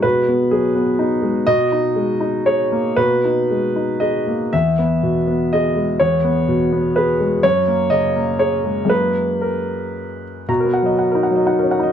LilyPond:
<<
  \new Staff \with { instrumentName = "Grand piano" } { \time 3/4 \key b \major \tempo 4 = 122 b'4 gis'4 r4 | dis''2 cis''4 | b'2 dis''4 | e''2 dis''4 |
cis''2 b'8 r8 | cis''4 dis''4 cis''4 | b'4 ais'4. r8 | ais''16 ais'16 fis''16 dis''16 fis''16 ais'16 fis''16 dis''16 fis''16 ais'16 fis''16 dis''16 | }
  \new Staff \with { instrumentName = "Grand piano" } { \time 3/4 \key b \major <b, gis>8 b8 fis8 b8 dis'8 gis8 | b,8 dis'8 gis8 dis'8 gis'8 ais8 | b,8 dis'8 gis8 dis'8 gis'8 ais8 | e,8 b8 b,8 b8 gis'8 gis8 |
e,8 b8 b,8 b8 gis'8 gis8 | fis,8 ais8 cis8 ais8 gis'8 gis8 | <fis, gis ais gis'>2. | \tuplet 3/2 { b,8 b8 fis8~ fis8 dis'8 fis8 dis'8 cis'8 dis'8 } | }
>>